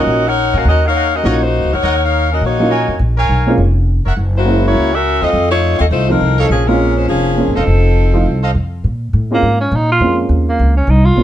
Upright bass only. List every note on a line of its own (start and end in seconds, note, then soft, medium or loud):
0.06 0.50 A#1 medium
0.54 0.64 A#2 medium
0.65 1.21 D#2 medium
1.24 1.60 A#1 medium
1.64 1.73 C#2 medium
1.73 1.82 D2 medium
1.83 2.38 D#2 medium
2.41 2.85 A#1 medium
2.88 2.99 F2 medium
2.99 3.27 A#1 medium
3.29 3.56 B1 medium
3.58 4.01 F1 medium
4.06 4.16 F1 medium
4.17 4.72 F#1 medium
4.75 5.18 C#2 medium
5.22 5.32 D#2 medium
5.33 5.77 F2 medium
5.80 5.90 D#2 medium
5.91 6.18 C2 medium
6.21 6.48 C2 medium
6.49 7.05 A#1 medium
7.09 7.45 F1 medium
7.47 7.56 G#1 medium
7.57 7.66 E1 medium
7.67 8.22 F1 medium
8.26 8.53 C2 medium
8.55 8.82 F2 medium
8.84 9.12 A#2 medium
9.13 9.41 A2 medium
9.42 9.70 G#2 medium
9.72 9.99 A#2 medium
10.00 10.29 F2 medium
10.29 10.58 D#2 medium
10.59 10.86 C#2 medium
10.87 11.16 C2 medium
11.16 11.23 A#1 medium